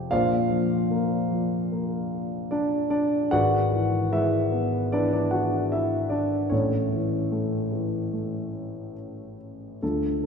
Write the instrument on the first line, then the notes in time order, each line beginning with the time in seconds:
grand piano
Already playing: C3 C4 G4 C5 G5
0.11 A#1 A#2 F4 C5 D5 F5
0.52 F3
0.91 A#3
1.31 F3
1.72 A#3
2.51 D4 D5
2.90 D4 D5
3.31 G#1 G#2 F#4 B4 D5 F#5
3.72 E3
4.12 G#3 E4 B4 E5
4.52 B3
4.92 E3 D4 B4 D5
5.13 D4 D5
5.31 F#4 F#5
5.72 E4 E5
6.09 D4 D5
6.50 A1 A2 C#4 E4 A4 C#5
6.93 E3
7.31 A3
7.72 E3
8.13 A3
9.82 D2 D4 F4 A4